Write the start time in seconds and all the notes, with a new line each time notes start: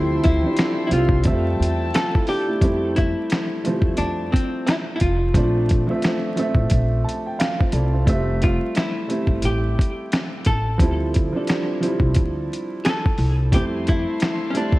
Already playing: D2 F3 G3 C4 E4 A4 E5 G5 C6
0.24 D2 E4, kick, closed hi-hat
0.42 F3 G3 C4
0.46 D4
0.57 finger snap, snare, closed hi-hat
0.87 F3 G3 E4
0.91 C2 C4 F4, closed hi-hat
1.09 kick
1.23 F2 G3 A3 C4 E5 G5 A5, kick, closed hi-hat
1.60 E2, closed hi-hat
1.94 C4 F4 A4, finger snap, snare, closed hi-hat
2.15 E4 A4, kick
2.27 D4 G4, open hi-hat
2.48 A3 E4
2.61 F2 G3 A3 C4 E4, kick, closed hi-hat
2.96 E4, kick, closed hi-hat
3.30 finger snap, snare, closed hi-hat
3.63 F3 G3 A3 C4, closed hi-hat
3.82 E2, kick
3.97 F2 D4, closed hi-hat
4.32 C4, kick, closed hi-hat
4.66 E4, finger snap, snare, closed hi-hat
4.96 E4
5.00 F1 F4, kick, closed hi-hat
5.34 A#1 F3 A3 C4 D4, kick, closed hi-hat
5.69 kick, closed hi-hat
5.87 F3 A3 C4 E5
6.02 finger snap, snare, closed hi-hat
6.36 F3 A3 C4 E5, closed hi-hat
6.55 A1, kick
6.70 A#1, kick, closed hi-hat
7.04 A5
7.09 closed hi-hat
7.26 G5
7.39 F5, finger snap, snare, closed hi-hat
7.59 C4 F4, kick
7.72 C2 E4 A4 D5, closed hi-hat
7.93 C4 F4
8.06 F1 G3 A3 C4 E5, kick, closed hi-hat
8.42 F4, kick, closed hi-hat
8.75 E4, finger snap, snare, closed hi-hat
9.07 G3 A3 C4 E4, closed hi-hat
9.27 G1, kick
9.42 A1 G4, closed hi-hat
9.79 kick, closed hi-hat
10.12 finger snap, snare, closed hi-hat
10.45 A1 A4, kick, closed hi-hat
10.78 D2 F3 G3 C4, kick, closed hi-hat
10.82 E4
11.14 kick, closed hi-hat
11.33 F3 G3 C4 D4
11.47 finger snap, snare, closed hi-hat
11.81 F3 G3 C4 E4, closed hi-hat
12.00 C2, kick
12.14 D2, kick, closed hi-hat
12.53 closed hi-hat
12.85 A4, finger snap, snare, closed hi-hat
13.06 kick
13.18 C2, open hi-hat
13.52 F2 F3 G3 A3 C4 E4 G4 E5 A5 C6, kick, closed hi-hat
13.87 E4, kick, closed hi-hat
14.20 finger snap, snare, closed hi-hat
14.50 G3 A3 C#4
14.55 C4 D4 E4, closed hi-hat
14.72 E2, kick